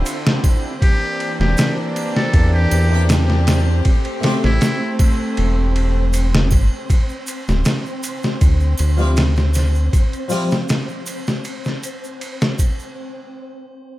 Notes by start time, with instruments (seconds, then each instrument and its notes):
Already playing: string section D3 C4 E4 F4 G4, synth texture C4 C5
0.06 ride, shaker
0.27 snare
0.44 kick, ride, triangle
0.82 string section E3 A#3 D4 G4, muted trumpet G4, kick, ride
1.20 ride
1.40 analog synth bass E1, muted trumpet G4, snare
1.57 snare, ride, shaker
1.96 ride, triangle
2.16 muted trumpet A4, snare
2.33 analog synth bass E2, kick, ride
2.54 muted trumpet G4
2.71 analog synth bass E2, ride, triangle
2.89 harpsichord D4 E4
2.94 harpsichord G4
3.09 snare, ride, shaker
3.30 snare
3.47 snare, ride, triangle
3.85 string section A3 C4, kick, ride
4.05 ride
4.20 harpsichord A3 C4, snare, ride
4.25 harpsichord G4
4.44 analog synth bass A1, muted trumpet E4, snare
4.61 snare, ride, shaker
4.99 kick, ride, triangle
5.37 analog synth bass E1, ride
5.76 ride
6.13 ride, shaker
6.35 snare
6.51 analog synth bass G1, kick, ride, triangle
6.89 synth texture C4 C5, kick, ride, shaker
7.09 shaker
7.27 ride, shaker
7.48 analog synth bass D1, snare, shaker
7.65 snare, ride, shaker
7.86 shaker
8.03 ride, shaker
8.23 snare, shaker
8.41 analog synth bass D2, kick, ride, shaker
8.60 shaker
8.78 analog synth bass D2, ride, triangle, shaker
8.97 harpsichord F3 G3 C4, shaker
9.02 harpsichord E4
9.16 snare, ride, shaker
9.36 snare, shaker
9.54 snare, ride, triangle, shaker
9.75 shaker
9.93 kick, ride, shaker
10.13 ride, shaker
10.28 harpsichord F3 G3 C4, open hi-hat, shaker
10.34 harpsichord E4
10.51 snare, shaker
10.69 snare, ride, shaker
10.89 shaker
11.06 ride, triangle, shaker
11.27 snare, shaker
11.44 ride, shaker
11.64 snare, shaker
11.83 ride, shaker
12.04 shaker
12.21 ride, shaker
12.41 snare, shaker
12.59 kick, ride, triangle, shaker
12.79 shaker